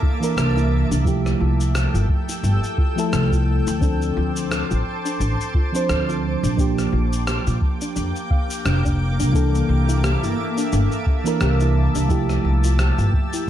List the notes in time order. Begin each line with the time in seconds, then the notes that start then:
Already playing: E3 A#3 D4 A4 E5 A5 D6
0.02 E4, kick
0.20 E3 A#3 D4 A#4, cabasa
0.37 C2 G4, cross-stick, cabasa
0.57 E4, cabasa
0.91 C2 D4, cabasa
1.04 F3 A3 E4 G4 A4 G5 E6, kick, cabasa
1.26 cross-stick, cabasa
1.40 C2 F4
1.61 cabasa
1.75 G4, cross-stick, cabasa
1.94 G1 F4, cabasa
2.09 kick
2.29 E4, cabasa
2.43 G1 E4, cabasa
2.64 cabasa
2.78 F4, kick
2.96 F3 A3 E4 A4, cabasa
3.12 C2 G4, cross-stick, cabasa
3.32 F4, kick, cabasa
3.67 D2 E4, cabasa
3.80 F3 C4 D4 A4 C5 A5 D6, kick, cabasa
4.02 cabasa
4.16 D2 F4
4.37 cabasa
4.51 A4, cross-stick, cabasa
4.70 A1 F4, cabasa
5.05 D4, cabasa
5.20 A1 D4, cabasa
5.41 cabasa
5.54 F4, kick
5.72 F3 C4 D4 C5, cabasa
5.89 D2 A4, cross-stick, cabasa
6.09 F4, cabasa
6.43 A#1 D4, cabasa
6.56 F3 A#3 D4 G4 G5, kick, cabasa
6.78 cross-stick, cabasa
6.92 A#1 F4
7.13 cabasa
7.27 G4, cross-stick, cabasa
7.47 A#2 F4, cabasa
7.62 kick
7.81 D4, cabasa
7.96 F2 D4, cabasa
8.16 cabasa
8.31 F5, kick
8.51 cabasa
8.65 F1 D4, cross-stick, cabasa
8.85 D4, kick, cabasa
9.19 C2 D4, cabasa
9.32 E3 A#3 D4 A4 E5 A5, kick, cabasa
9.55 cabasa
9.69 C2
9.88 E4, cabasa
10.03 G4, cross-stick, cabasa
10.23 G1 E4, cabasa
10.58 D4, cabasa
10.72 G1 D4, cabasa
10.92 cabasa
11.06 kick
11.24 E3 A#3 D4 E4 A#4, cabasa
11.41 C2 G4, cross-stick, cabasa
11.60 E4, cabasa
11.95 C2 D4, cabasa
12.07 F3 A3 E4 G4 E6, kick, cabasa
12.29 cross-stick, cabasa
12.44 C2
12.64 F4, cabasa
12.79 G4, cross-stick, cabasa
12.98 G1 F4, cabasa
13.13 kick
13.33 E4, cabasa